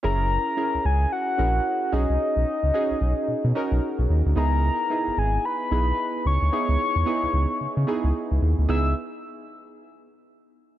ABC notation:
X:1
M:4/4
L:1/16
Q:"Swing 16ths" 1/4=111
K:C#dor
V:1 name="Soft synth lead"
a6 g2 f6 d2- | d12- d2 z2 | a6 g2 b6 c'2- | c'12- c'2 z2 |
e'2 z12 z2 |]
V:2 name="Synth keys"
[CEGA]4 [CEGA]4 z2 [CEGA]4 [CDFG]2- | [CDFG]2 z2 [CDFG]4 z2 [CDFA]4 z2 | [B,DEG]4 [B,DEG]4 z2 [B,DEG]4 z2 | [B,DEG]4 [B,DEG]4 z2 [B,DEG]4 z2 |
[B,DEG]2 z12 z2 |]
V:3 name="Analog synth bass" clef=bass
F,,,3 z2 C,, C,,2 z2 A,,,2 z2 B,,, ^B,,, | z B,,, z C,, z B,,, B,,, z B,, B,, z B,,, z B,,, D,, =D,, | C,,3 z2 G,,, G,,,2 z2 B,,,2 z2 C,, =D,, | z C,, z E,, z C,, C,, z C, C, z C,, z C,, D,, =D,, |
C,,2 z12 z2 |]